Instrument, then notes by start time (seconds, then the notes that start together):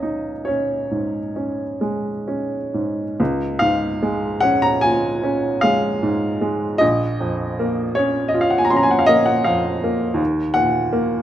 upright piano
Already playing: C#2 C#4 D#5
0.03 D#4
0.45 C#4 C#5
0.91 G#2
1.36 C#4
1.81 G#3
2.28 C#4
2.74 G#2
3.20 C#2
3.59 G#2 F5
4.02 G#3
4.41 C#4 F#5
4.62 A#5
4.81 F4 G#5
5.23 C#4
5.61 G#3 F5
6.03 G#2
6.41 G#3
6.78 A#1 D#5
7.20 F2
7.59 A#3
7.95 C#4 C#5
8.28 D#5
8.34 F4
8.41 F5
8.50 F#5
8.58 G#5
8.65 A#5
8.70 C#4 C6
8.77 A#5
8.83 G#5
8.91 F#5
8.99 F5
9.06 A#3 D#5
9.26 F#5
9.44 F2 F5
9.84 A#3
10.14 D#2
10.54 A#2 F#5
10.93 A#3